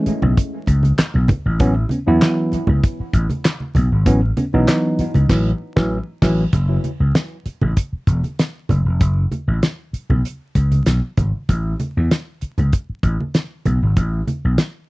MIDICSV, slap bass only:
0, 0, Header, 1, 3, 480
1, 0, Start_track
1, 0, Tempo, 617920
1, 1241, Time_signature, 4, 2, 24, 8
1, 11569, End_track
2, 0, Start_track
2, 0, Title_t, "Slap bass"
2, 0, Program_c, 0, 36
2, 174, Note_on_c, 0, 35, 90
2, 259, Note_off_c, 0, 35, 0
2, 523, Note_on_c, 0, 37, 105
2, 706, Note_off_c, 0, 37, 0
2, 892, Note_on_c, 0, 35, 94
2, 977, Note_off_c, 0, 35, 0
2, 1131, Note_on_c, 0, 33, 83
2, 1216, Note_off_c, 0, 33, 0
2, 1241, Note_on_c, 0, 33, 114
2, 1424, Note_off_c, 0, 33, 0
2, 1610, Note_on_c, 0, 40, 73
2, 1695, Note_off_c, 0, 40, 0
2, 2086, Note_on_c, 0, 37, 85
2, 2171, Note_off_c, 0, 37, 0
2, 2434, Note_on_c, 0, 33, 95
2, 2532, Note_off_c, 0, 33, 0
2, 2919, Note_on_c, 0, 35, 93
2, 3014, Note_off_c, 0, 35, 0
2, 3043, Note_on_c, 0, 32, 73
2, 3157, Note_off_c, 0, 32, 0
2, 3157, Note_on_c, 0, 33, 106
2, 3339, Note_off_c, 0, 33, 0
2, 3524, Note_on_c, 0, 35, 81
2, 3609, Note_off_c, 0, 35, 0
2, 3998, Note_on_c, 0, 37, 84
2, 4085, Note_off_c, 0, 37, 0
2, 4113, Note_on_c, 0, 33, 99
2, 4278, Note_off_c, 0, 33, 0
2, 4481, Note_on_c, 0, 33, 101
2, 4641, Note_off_c, 0, 33, 0
2, 4833, Note_on_c, 0, 33, 90
2, 4998, Note_off_c, 0, 33, 0
2, 5073, Note_on_c, 0, 30, 93
2, 5256, Note_off_c, 0, 30, 0
2, 5438, Note_on_c, 0, 37, 71
2, 5525, Note_off_c, 0, 37, 0
2, 5918, Note_on_c, 0, 33, 67
2, 6005, Note_off_c, 0, 33, 0
2, 6272, Note_on_c, 0, 28, 84
2, 6370, Note_off_c, 0, 28, 0
2, 6755, Note_on_c, 0, 30, 86
2, 6853, Note_off_c, 0, 30, 0
2, 6878, Note_on_c, 0, 29, 74
2, 6996, Note_off_c, 0, 29, 0
2, 6996, Note_on_c, 0, 30, 94
2, 7180, Note_off_c, 0, 30, 0
2, 7361, Note_on_c, 0, 33, 76
2, 7449, Note_off_c, 0, 33, 0
2, 7841, Note_on_c, 0, 35, 74
2, 7930, Note_off_c, 0, 35, 0
2, 8198, Note_on_c, 0, 37, 81
2, 8384, Note_off_c, 0, 37, 0
2, 8439, Note_on_c, 0, 35, 84
2, 8538, Note_off_c, 0, 35, 0
2, 8682, Note_on_c, 0, 32, 78
2, 8780, Note_off_c, 0, 32, 0
2, 8926, Note_on_c, 0, 33, 105
2, 9110, Note_off_c, 0, 33, 0
2, 9298, Note_on_c, 0, 40, 63
2, 9382, Note_off_c, 0, 40, 0
2, 9776, Note_on_c, 0, 37, 85
2, 9862, Note_off_c, 0, 37, 0
2, 10123, Note_on_c, 0, 33, 90
2, 10223, Note_off_c, 0, 33, 0
2, 10609, Note_on_c, 0, 35, 75
2, 10707, Note_off_c, 0, 35, 0
2, 10738, Note_on_c, 0, 32, 63
2, 10824, Note_off_c, 0, 32, 0
2, 10852, Note_on_c, 0, 33, 106
2, 11035, Note_off_c, 0, 33, 0
2, 11222, Note_on_c, 0, 35, 67
2, 11307, Note_off_c, 0, 35, 0
2, 11569, End_track
3, 0, Start_track
3, 0, Title_t, "Muted slap bass strokes"
3, 49, Note_on_c, 9, 29, 52
3, 126, Note_off_c, 9, 29, 0
3, 767, Note_on_c, 9, 29, 43
3, 845, Note_off_c, 9, 29, 0
3, 1963, Note_on_c, 9, 29, 51
3, 2041, Note_off_c, 9, 29, 0
3, 2329, Note_on_c, 9, 29, 53
3, 2407, Note_off_c, 9, 29, 0
3, 3874, Note_on_c, 9, 29, 51
3, 3951, Note_off_c, 9, 29, 0
3, 5792, Note_on_c, 9, 29, 48
3, 5870, Note_off_c, 9, 29, 0
3, 6157, Note_on_c, 9, 29, 45
3, 6235, Note_off_c, 9, 29, 0
3, 7716, Note_on_c, 9, 29, 46
3, 7794, Note_off_c, 9, 29, 0
3, 9650, Note_on_c, 9, 29, 46
3, 9728, Note_off_c, 9, 29, 0
3, 10017, Note_on_c, 9, 29, 41
3, 10094, Note_off_c, 9, 29, 0
3, 11569, End_track
0, 0, End_of_file